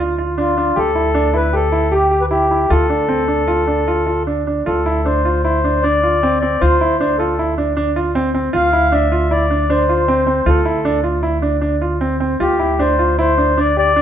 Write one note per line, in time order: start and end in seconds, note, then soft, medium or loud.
0.00 0.73 D2 medium
0.00 0.12 F4 medium
0.18 0.31 F4 medium
0.38 0.51 D4 medium
0.38 0.79 F4 medium
0.57 0.70 D4 medium
0.76 2.67 D2 medium
0.76 0.89 G4 medium
0.76 1.37 A4 medium
0.95 1.08 E4 medium
1.14 1.28 D4 medium
1.34 1.47 E4 medium
1.34 1.55 B4 medium
1.53 1.66 G4 medium
1.53 1.94 A4 medium
1.72 1.85 E4 medium
1.92 2.05 G4 medium
1.92 2.23 G4 medium
2.11 2.25 G4 medium
2.21 2.26 B4 medium
2.31 2.44 E4 medium
2.31 2.71 G4 medium
2.51 2.64 E4 medium
2.70 4.63 D2 medium
2.70 2.83 F4 medium
2.70 4.23 A4 medium
2.90 3.03 D4 medium
3.09 3.22 C4 medium
3.28 3.41 D4 medium
3.48 3.61 F4 medium
3.67 3.81 D4 medium
3.88 4.01 F4 medium
4.06 4.20 F4 medium
4.27 4.40 D4 medium
4.47 4.60 D4 medium
4.66 6.58 D2 medium
4.66 4.79 F4 medium
4.66 5.08 A4 medium
4.86 4.99 E4 medium
5.05 5.19 D4 medium
5.05 5.42 C5 medium
5.25 5.38 F4 medium
5.43 5.58 E4 medium
5.43 5.84 C5 medium
5.64 5.77 D4 medium
5.82 5.97 D4 medium
5.82 6.39 D5 medium
6.03 6.16 F4 medium
6.23 6.36 C4 medium
6.40 6.55 C4 medium
6.40 6.61 D5 medium
6.60 8.50 D2 medium
6.60 6.75 F4 medium
6.60 6.98 C5 medium
6.81 6.94 E4 medium
6.99 7.13 D4 medium
6.99 7.18 C5 medium
7.18 7.32 F4 medium
7.18 7.55 A4 medium
7.39 7.52 E4 medium
7.58 7.71 D4 medium
7.77 7.90 D4 medium
7.96 8.09 F4 medium
8.15 8.28 C4 medium
8.34 8.47 C4 medium
8.53 10.42 D2 medium
8.53 8.66 F4 medium
8.53 8.94 F5 loud
8.73 8.86 E4 medium
8.92 9.05 D4 medium
8.92 9.33 E5 medium
9.12 9.25 F4 medium
9.31 9.44 E4 medium
9.31 9.71 D5 medium
9.50 9.63 D4 medium
9.70 9.82 D4 medium
9.70 10.49 C5 medium
9.89 10.02 F4 medium
10.08 10.21 C4 medium
10.27 10.40 C4 medium
10.46 12.37 D2 medium
10.46 10.59 F4 medium
10.46 11.01 A4 medium
10.65 10.78 E4 medium
10.85 10.98 D4 medium
11.04 11.17 F4 medium
11.23 11.36 E4 medium
11.42 11.55 D4 medium
11.61 11.75 D4 medium
11.82 11.95 F4 medium
12.01 12.14 C4 medium
12.20 12.34 C4 medium
12.40 14.02 D2 medium
12.40 12.53 F4 medium
12.40 12.81 G4 medium
12.59 12.73 E4 medium
12.79 12.93 D4 medium
12.79 13.17 C5 medium
12.99 13.12 F4 medium
13.19 13.32 E4 medium
13.19 13.60 C5 medium
13.38 13.51 D4 medium
13.57 13.70 D4 medium
13.57 13.77 D5 medium
13.77 13.90 G4 medium
13.77 14.02 D5 loud
13.96 14.02 D4 medium